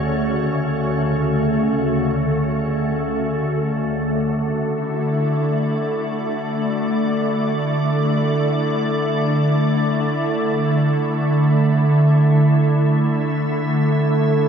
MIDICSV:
0, 0, Header, 1, 3, 480
1, 0, Start_track
1, 0, Key_signature, 2, "major"
1, 0, Tempo, 500000
1, 13906, End_track
2, 0, Start_track
2, 0, Title_t, "Ambient pad"
2, 0, Program_c, 0, 92
2, 0, Note_on_c, 0, 38, 73
2, 0, Note_on_c, 0, 49, 87
2, 0, Note_on_c, 0, 57, 77
2, 0, Note_on_c, 0, 66, 66
2, 0, Note_on_c, 0, 73, 72
2, 3657, Note_off_c, 0, 49, 0
2, 3659, Note_off_c, 0, 73, 0
2, 3661, Note_off_c, 0, 38, 0
2, 3665, Note_on_c, 0, 50, 81
2, 4346, Note_on_c, 0, 64, 80
2, 4569, Note_on_c, 0, 74, 82
2, 8054, Note_off_c, 0, 66, 0
2, 12426, Note_on_c, 0, 76, 85
2, 12763, Note_off_c, 0, 74, 0
2, 13906, Note_off_c, 0, 50, 0
2, 13906, Note_off_c, 0, 57, 0
2, 13906, Note_off_c, 0, 64, 0
2, 13906, Note_off_c, 0, 76, 0
2, 13906, End_track
3, 0, Start_track
3, 0, Title_t, "Synth drone"
3, 0, Program_c, 1, 95
3, 3661, Note_on_c, 1, 50, 64
3, 13906, Note_off_c, 1, 50, 0
3, 13906, End_track
0, 0, End_of_file